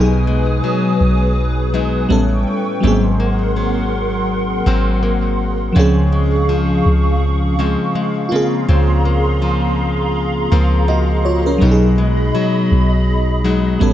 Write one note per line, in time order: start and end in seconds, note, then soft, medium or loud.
0.00 0.61 B1 loud
0.00 2.10 B2 medium
0.00 2.05 F#3 medium
0.00 2.06 B3 medium
0.00 1.74 D#4 medium
0.00 2.07 D#4 medium
0.00 2.11 G#4 medium
0.00 2.81 B4 medium
0.00 2.06 G#5 medium
0.00 2.08 D#6 medium
0.27 1.73 G#3 medium
0.64 1.73 F#3 medium
1.01 2.06 B1 medium
1.74 2.19 F#3 medium
1.74 2.19 G#3 medium
1.74 2.19 D#4 medium
2.09 2.45 A1 loud
2.09 2.83 A2 medium
2.09 2.83 G3 medium
2.09 2.83 B3 medium
2.09 2.84 C#4 medium
2.09 2.84 A4 medium
2.09 2.83 G5 medium
2.09 2.83 C#6 medium
2.80 4.62 G#1 loud
2.80 5.76 G#2 medium
2.80 5.71 F#3 medium
2.80 5.72 A#3 medium
2.80 4.67 C4 medium
2.80 5.73 A#4 medium
2.80 5.73 F#5 medium
2.80 5.73 C6 medium
2.85 5.73 C4 medium
2.85 5.74 G#4 medium
3.20 4.66 A#3 medium
3.56 4.65 F#3 medium
4.66 5.72 G#1 loud
4.66 5.84 F#3 medium
4.66 5.01 A#3 medium
4.66 5.76 C4 medium
5.03 5.84 A#3 medium
5.73 6.82 C#2 loud
5.73 8.31 C#3 medium
5.73 8.26 F3 medium
5.73 8.28 C4 medium
5.73 7.60 C4 medium
5.73 8.30 G#4 medium
5.73 11.57 F5 medium
5.73 8.30 C#6 medium
5.77 8.29 C#4 medium
5.77 8.30 G#4 medium
6.12 7.59 G#3 medium
6.49 7.58 F3 medium
6.86 7.77 C#2 loud
7.59 9.41 F3 medium
7.59 7.95 G#3 medium
7.59 8.69 C4 medium
7.95 9.05 G#3 medium
8.29 8.67 C#3 medium
8.29 11.20 A#3 medium
8.29 11.19 F4 medium
8.29 13.77 G#4 medium
8.29 11.58 A#5 medium
8.29 11.58 C6 medium
8.33 10.48 C4 medium
8.33 10.49 G#4 medium
8.69 10.48 C#2 loud
8.69 11.61 C#3 medium
8.69 10.52 C4 medium
9.05 10.51 A#3 medium
9.42 10.50 F3 medium
10.52 11.58 C#2 loud
10.52 11.70 F3 medium
10.52 10.87 A#3 medium
10.52 11.62 C4 medium
10.88 11.70 A#3 medium
10.88 11.24 F#4 medium
10.88 11.23 D#5 medium
11.25 11.45 F4 medium
11.25 11.45 C#5 medium
11.46 11.81 C#4 medium
11.46 11.81 A#4 medium
11.58 12.32 B1 loud
11.58 13.81 B2 medium
11.58 13.75 F#3 medium
11.58 13.76 B3 medium
11.58 13.44 D#4 medium
11.58 13.79 D#5 medium
11.58 13.79 B5 medium
11.63 13.77 D#4 medium
11.63 11.71 G4 medium
11.71 13.82 G#4 medium
11.98 13.44 G#3 medium
12.35 13.43 F#3 medium
12.72 13.77 B1 loud
13.45 13.89 F#3 medium
13.45 13.90 G#3 medium
13.45 13.90 D#4 medium
13.79 13.93 A1 loud
13.79 13.93 A2 medium
13.79 13.93 G3 medium
13.79 13.93 B3 medium
13.79 13.93 C#4 medium
13.79 13.93 G4 medium
13.79 13.93 A4 medium
13.79 13.93 C#5 medium
13.79 13.93 B5 medium